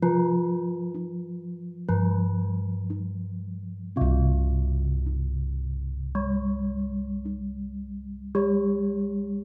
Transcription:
Already playing: kettle gongs F3
0.02 bronze metallophone F3, kettle gongs F4
0.95 kettle gongs D#4
1.89 kettle gongs G2, bronze metallophone F3
2.90 kettle gongs D#4
3.96 bronze metallophone C3, kettle gongs C4
4.01 kettle gongs C2
5.06 kettle gongs D#4
6.15 bronze metallophone G3
7.25 kettle gongs D#4
8.35 bronze metallophone G3, kettle gongs G4

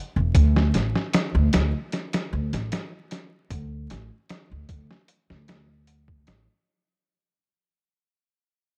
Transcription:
0.16 upright bass E1
0.35 upright bass D2, kick, closed hi-hat
0.56 snare
0.74 upright bass A1, snare, closed hi-hat
0.96 snare
1.13 snare, closed hi-hat
1.35 upright bass D2
1.53 upright bass D2, snare, closed hi-hat
1.92 snare, closed hi-hat
2.13 snare, closed hi-hat
2.33 upright bass D2
2.53 upright bass A1, snare, closed hi-hat
2.72 snare, closed hi-hat
3.11 snare, closed hi-hat
3.50 upright bass D2, kick, closed hi-hat
3.90 upright bass A1, snare, closed hi-hat
4.29 snare, closed hi-hat
4.51 upright bass D2
4.69 upright bass D2, kick, closed hi-hat
4.91 snare
5.08 closed hi-hat
5.30 upright bass D2, snare
5.48 snare, closed hi-hat
5.87 closed hi-hat
6.08 kick
6.27 upright bass A1, snare, closed hi-hat

